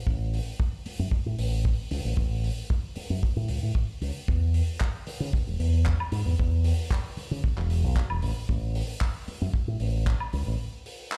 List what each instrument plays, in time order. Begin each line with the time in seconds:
0.07 fingered electric bass A1, kick
0.34 open hi-hat
0.60 kick
0.86 muted fingered electric bass stroke, open hi-hat
0.99 fingered electric bass F#2
1.11 kick
1.26 fingered electric bass A2
1.38 fingered electric bass A1, open hi-hat
1.65 kick
1.91 fingered electric bass C#2, open hi-hat
2.05 fingered electric bass A1
2.17 fingered electric bass A1, kick
2.44 open hi-hat
2.70 kick
2.96 muted fingered electric bass stroke, open hi-hat
3.10 fingered electric bass F#2
3.23 kick
3.36 fingered electric bass A2
3.48 fingered electric bass C#2, open hi-hat
3.63 fingered electric bass A2
3.75 kick
4.01 fingered electric bass C#2, open hi-hat
4.28 fingered electric bass E2, kick
4.54 open hi-hat
4.80 kick, clap
5.07 muted fingered electric bass stroke, open hi-hat
5.20 fingered electric bass C#3
5.33 kick
5.47 fingered electric bass E1
5.59 fingered electric bass E2, open hi-hat
5.86 kick, clap
6.00 high woodblock
6.12 fingered electric bass G#2, open hi-hat
6.26 fingered electric bass E2
6.40 fingered electric bass E2, kick
6.64 open hi-hat
6.91 kick, clap
7.17 muted fingered electric bass stroke, open hi-hat
7.31 fingered electric bass C#3
7.44 kick
7.57 fingered electric bass E1, clap
7.70 open hi-hat
7.84 fingered electric bass B1
7.96 kick, clap
8.10 fingered electric bass E1, high woodblock
8.22 fingered electric bass A1, open hi-hat
8.49 fingered electric bass A1, kick
8.75 open hi-hat
9.01 kick, clap
9.28 muted fingered electric bass stroke, open hi-hat
9.41 fingered electric bass F#2
9.54 kick
9.68 fingered electric bass A2
9.80 fingered electric bass A1, open hi-hat
10.06 kick, clap
10.20 high woodblock
10.33 fingered electric bass C#2, open hi-hat
10.47 fingered electric bass A1
10.86 open hi-hat
11.12 clap